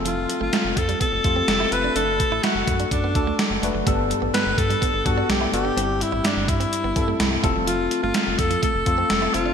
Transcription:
Already playing: analog synth bass F1, tine electric piano A3 C4 F4 A4
0.05 clean electric guitar F3, alto saxophone F4, closed hi-hat
0.29 muted clean electric guitar stroke, closed hi-hat
0.41 analog synth bass G1, clean electric guitar A3, alto saxophone F4
0.53 clean electric guitar A3, snare, closed hi-hat
0.65 analog synth bass F1
0.76 analog synth bass F2, alto saxophone A4, muted clean electric guitar stroke, kick, closed hi-hat
0.89 clean electric guitar G3, closed hi-hat
1.00 clean electric guitar B3, alto saxophone A4, kick, closed hi-hat
1.12 analog synth bass F1, muted clean electric guitar stroke
1.24 analog synth bass F2, tine electric piano A3 C4 F4 G4, kick, closed hi-hat
1.36 clean electric guitar C4
1.48 analog synth bass F1, snare, closed hi-hat
1.60 clean electric guitar E4
1.71 analog synth bass F1, tine electric piano A3 C4 F4 A4, alto saxophone B4, muted clean electric guitar stroke, closed hi-hat
1.84 clean electric guitar D4
1.95 analog synth bass F#1, tine electric piano A3 D4 F#4 A4, clean electric guitar D4, alto saxophone A4, closed hi-hat
2.20 muted clean electric guitar stroke, kick, closed hi-hat
2.31 analog synth bass A1, clean electric guitar E4
2.43 clean electric guitar E4, alto saxophone F#4, snare, closed hi-hat
2.55 analog synth bass F#1
2.67 analog synth bass F#2, muted clean electric guitar stroke, kick, closed hi-hat
2.80 clean electric guitar D4, closed hi-hat
2.91 analog synth bass F#2, alto saxophone D4, kick, closed hi-hat
3.04 clean electric guitar B3
3.15 analog synth bass D2, tine electric piano A3 D4 F#4 A4, muted clean electric guitar stroke, kick, closed hi-hat
3.27 clean electric guitar A3
3.39 muted clean electric guitar stroke, snare, closed hi-hat
3.50 analog synth bass F#1
3.62 analog synth bass F1, clean electric guitar A3, tine electric piano A3 D4 F#4 B4, closed hi-hat
3.74 analog synth bass F#1, clean electric guitar F#3
3.86 analog synth bass G1, tine electric piano G2 B3 D4 G4 A4, clean electric guitar G3, kick, closed hi-hat
4.10 muted clean electric guitar stroke, closed hi-hat
4.22 analog synth bass A1, clean electric guitar B3
4.34 clean electric guitar B3, alto saxophone B4, snare, closed hi-hat
4.46 analog synth bass G1
4.58 analog synth bass G2, alto saxophone A4, muted clean electric guitar stroke, kick, closed hi-hat
4.70 clean electric guitar G3, closed hi-hat
4.82 clean electric guitar B3, kick, closed hi-hat
4.94 analog synth bass G1, muted clean electric guitar stroke
5.05 analog synth bass G2, tine electric piano B3 D4 G4 A4, alto saxophone F#4, kick, closed hi-hat
5.18 clean electric guitar D4
5.29 analog synth bass B1, alto saxophone G4, snare, closed hi-hat
5.41 clean electric guitar E4
5.53 analog synth bass F#1, tine electric piano B3 D4 G4 A4, alto saxophone G4, muted clean electric guitar stroke, closed hi-hat
5.65 clean electric guitar D4
5.77 analog synth bass G1, tine electric piano G2 G3 C4 E4 G4, clean electric guitar C4, closed hi-hat
6.01 alto saxophone E4, muted clean electric guitar stroke, closed hi-hat
6.12 analog synth bass A1, clean electric guitar E4
6.24 alto saxophone D4, clean electric guitar E4, snare, closed hi-hat
6.37 analog synth bass G1
6.48 analog synth bass G2, alto saxophone E4, muted clean electric guitar stroke, kick, closed hi-hat
6.60 clean electric guitar C4, closed hi-hat
6.73 closed hi-hat
6.84 analog synth bass G1, clean electric guitar B3
6.95 analog synth bass G2, tine electric piano G3 C4 E4 A4, muted clean electric guitar stroke, kick, closed hi-hat
7.08 clean electric guitar A3
7.20 analog synth bass C2, muted clean electric guitar stroke, snare, closed hi-hat
7.43 analog synth bass F1, clean electric guitar G3, tine electric piano A3 C4 F4 A4, kick, closed hi-hat
7.56 clean electric guitar F3
7.67 clean electric guitar F3, alto saxophone F4, closed hi-hat
7.91 muted clean electric guitar stroke, closed hi-hat
8.03 analog synth bass G1, clean electric guitar A3, alto saxophone F4
8.14 clean electric guitar A3, snare, closed hi-hat
8.27 analog synth bass F1
8.39 analog synth bass F2, alto saxophone A4, muted clean electric guitar stroke, kick, closed hi-hat
8.51 clean electric guitar F3, closed hi-hat
8.62 clean electric guitar A3, alto saxophone A4, kick, closed hi-hat
8.74 analog synth bass F1, muted clean electric guitar stroke
8.86 analog synth bass F2, tine electric piano A3 C4 F4 A4, kick, closed hi-hat
8.98 clean electric guitar C4
9.10 analog synth bass F1, snare, closed hi-hat
9.22 clean electric guitar E4
9.34 analog synth bass F1, tine electric piano A3 C4 F4 C5, alto saxophone F4, muted clean electric guitar stroke, closed hi-hat
9.46 clean electric guitar D4

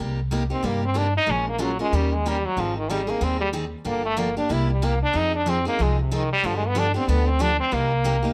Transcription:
0.00 upright bass C2, steel-string acoustic guitar C3 G3 A#3 D#4 G4
0.31 steel-string acoustic guitar C3 G3 A#3 D#4 G4
0.50 steel-string acoustic guitar A#3 D#4 G4, french horn C4
0.63 upright bass G2, steel-string acoustic guitar C3 G3 A#3 D#4 G4, french horn A#3
0.85 french horn C4
0.94 steel-string acoustic guitar C3 G3 A#3 D#4 G4, french horn D4
1.17 french horn D#4
1.26 upright bass A#1, steel-string acoustic guitar F3 G#3 C#4 F4 A#4
1.30 french horn C#4
1.49 french horn A#3
1.58 steel-string acoustic guitar F3 G#3 C#4 F4 A#4, french horn F#3
1.79 french horn G#3, steel-string acoustic guitar C#4 F4 A#4
1.92 upright bass D#2, steel-string acoustic guitar D#3 A#3 C#4 G4 A#4, french horn G3
2.13 french horn G#3
2.26 steel-string acoustic guitar D#3 A#3 C#4 G4 A#4, french horn G3
2.46 french horn F#3
2.57 upright bass G#1, steel-string acoustic guitar D#3 G3 C4 D#4 G#4, french horn F3
2.77 french horn D#3
2.90 steel-string acoustic guitar D#3 G3 C4 D#4 G#4, french horn G3
3.07 french horn A#3, steel-string acoustic guitar C4 D#4 G#4
3.21 upright bass D#2, steel-string acoustic guitar D#3 G3 C4 D#4 G#4, french horn C4
3.41 french horn G3
3.53 steel-string acoustic guitar D#3 G3 C4 D#4 G#4
3.85 upright bass G1, steel-string acoustic guitar D3 F3 A#3 D4 G4, french horn A#3
4.05 french horn A3
4.17 steel-string acoustic guitar D3 F3 A#3 D4 G4, french horn A#3
4.37 steel-string acoustic guitar A#3 D4 G4, french horn D4
4.49 upright bass C2, steel-string acoustic guitar C3 G3 A#3 E4 G4, french horn E4
4.71 french horn G3
4.82 steel-string acoustic guitar C3 G3 A#3 E4 G4, french horn A#3
5.03 french horn D4
5.13 upright bass F2, steel-string acoustic guitar F3 C4 D#4 G#4, french horn D#4
5.36 french horn D4
5.46 steel-string acoustic guitar F3 C4 D#4 G#4, french horn C4
5.65 french horn A#3, steel-string acoustic guitar C4 D#4 G#4
5.79 upright bass C2, steel-string acoustic guitar F3 C4 D#4 G#4, french horn G#3
6.00 french horn C3
6.11 french horn D#3, steel-string acoustic guitar F3 C4 D#4 G#4
6.33 french horn G3
6.43 upright bass G2, steel-string acoustic guitar D3 F3 B3 D4 G4, french horn F3
6.56 french horn G#3
6.67 french horn B3
6.75 steel-string acoustic guitar D3 F3 B3 D4 G4, french horn D4
6.94 steel-string acoustic guitar B3 D4 G4, french horn C4
7.08 upright bass D2, steel-string acoustic guitar D3 F3 B3 D4 G4, french horn B3
7.27 french horn C4
7.39 steel-string acoustic guitar D3 F3 B3 D4 G4, french horn D4
7.60 french horn C4
7.71 upright bass C2, steel-string acoustic guitar C3 G3 A#3 D#4 G4, french horn A#3
8.04 steel-string acoustic guitar C3 G3 A#3 D#4 G4
8.23 steel-string acoustic guitar A#3 D#4 G4

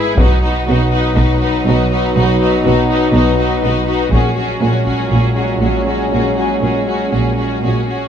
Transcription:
Already playing: double bass section G#1, cello section G#2, viola section E4, violin section G#4 B4
0.18 double bass section B1, trombone section B2 F#3, cello section B2, french horn section B3 D#4, viola section D#4, violin section F#4 B4, taiko
0.43 viola section D#4, violin section F#4 B4
0.67 double bass section B1, cello section B2, viola section D#4, violin section F#4 B4
0.91 viola section D#4, violin section F#4 B4
1.16 double bass section B1, cello section B2, viola section D#4, violin section F#4 B4, taiko
1.40 viola section D#4, violin section F#4 B4
1.65 double bass section B1, cello section B2, viola section D#4, violin section F#4 B4
1.91 viola section D#4, violin section F#4 B4
2.15 double bass section B1, cello section B2, viola section D#4, violin section F#4 B4
2.41 viola section D#4, violin section F#4 B4
2.63 double bass section B1, cello section B2, viola section D#4, violin section F#4 B4
2.89 viola section D#4, violin section F#4 B4
3.14 double bass section B1, cello section B2, viola section D#4, violin section F#4 B4
3.37 viola section D#4, violin section F#4 B4
3.62 double bass section B1, cello section B2, viola section D#4, violin section F#4 B4
3.88 viola section D#4, violin section F#4 B4
4.11 double bass section A#1, cello section A#2, trombone section A#2 F#3, french horn section G#3 C#4, viola section C#4, violin section F#4 G#4, taiko
4.35 viola section C#4, violin section F#4 G#4
4.61 double bass section A#1, cello section A#2, viola section C#4, violin section F#4 G#4
4.86 viola section C#4, violin section F#4 G#4, taiko
5.10 double bass section A#1, cello section A#2, viola section C#4, violin section F#4 G#4
5.34 viola section C#4, violin section F#4 G#4
5.61 double bass section A#1, cello section A#2, viola section C#4, violin section F#4 G#4
5.86 viola section C#4, violin section F#4 G#4
6.11 double bass section A#1, cello section A#2, viola section C#4, violin section F#4 G#4
6.36 viola section C#4, violin section F#4 G#4
6.61 double bass section A#1, cello section A#2, viola section C#4, violin section F#4 G#4
6.86 viola section C#4, violin section F#4 G#4
7.11 double bass section A#1, cello section A#2, viola section C#4, violin section F#4 G#4
7.37 viola section C#4, violin section F#4 G#4
7.62 double bass section A#1, cello section A#2, viola section C#4, violin section F#4 G#4
7.87 viola section C#4, violin section F#4 G#4

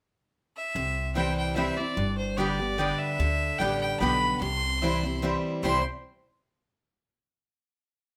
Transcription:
0.56 fiddle E5
0.75 upright bass C2, steel-string acoustic guitar C3
1.15 steel-string acoustic guitar E3 G3 C4 E4, mandolin C4 E4 C5 G5, fiddle G5
1.37 fiddle G5
1.56 steel-string acoustic guitar E3 G3 C4 E4, mandolin C4 E4 C5 G5, fiddle E5
1.77 steel-string acoustic guitar C4 E4, fiddle D5
1.97 upright bass G1, steel-string acoustic guitar G2
2.18 fiddle C5
2.37 steel-string acoustic guitar D3 G3 B3 G4, mandolin B3 G4 D5 G5, fiddle D5
2.59 steel-string acoustic guitar B3 G4
2.78 steel-string acoustic guitar D3 G3 B3 G4, mandolin B3 G4 D5 G5
2.98 fiddle E5
3.19 upright bass D2, steel-string acoustic guitar D3
3.59 upright bass A1, steel-string acoustic guitar D3 G3 B3 G4, mandolin B3 G4 D5 G5, fiddle G5
3.80 fiddle G5
4.00 upright bass B1, steel-string acoustic guitar D3 G3 B3 G4, mandolin B3 G4 D5 G5, fiddle B5
4.41 upright bass C2, steel-string acoustic guitar C3, fiddle C6
4.82 steel-string acoustic guitar E3 G3 C4 E4, mandolin C4 E4 C5 G5
5.03 steel-string acoustic guitar C4 E4
5.22 steel-string acoustic guitar E3 G3 C4 E4, mandolin C4 E4 C5 G5
5.63 upright bass C2, steel-string acoustic guitar C3 E3 G3 C4 E4, mandolin C4 E4 C5 G5, fiddle C6

